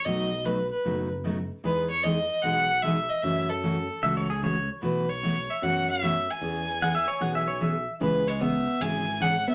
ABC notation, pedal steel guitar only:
X:1
M:4/4
L:1/16
Q:"Swing" 1/4=151
K:E
V:1 name="Pedal steel guitar"
z16 | z16 | z8 (3e2 c2 G2 c2 z2 | z16 |
z4 (3f2 e2 c2 (3f2 e2 c2 e3 z | z16 |]